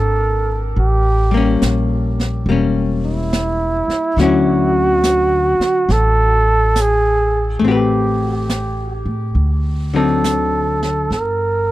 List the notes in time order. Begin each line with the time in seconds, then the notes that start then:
Already playing: G#1 D4 G4 A4
0.76 A1 G4, brush sweep
1.31 G3 A#3
1.37 C#4
1.62 A#1, snare, hi-hat pedal
2.20 snare
2.46 E1 G3 A#3, brush sweep
2.52 C#4
3.05 E4
3.33 snare, hi-hat pedal
3.88 muted upright bass stroke, snare
4.17 D2 D3 F#3 F#4, brush sweep, snare
4.21 C#4 E4
5.04 snare, hi-hat pedal
5.60 muted upright bass stroke, snare
5.89 A1 A4, brush sweep, snare
6.76 snare, hi-hat pedal
6.81 G#4
7.59 A1 A3, brush sweep
7.64 C4 G4
7.71 B4
8.50 snare, hi-hat pedal
9.05 A2
9.35 D2, brush sweep
9.94 D3 F#3 C4 D#4 A4
10.24 snare, hi-hat pedal
10.83 snare
11.10 G1 A#4, brush sweep, snare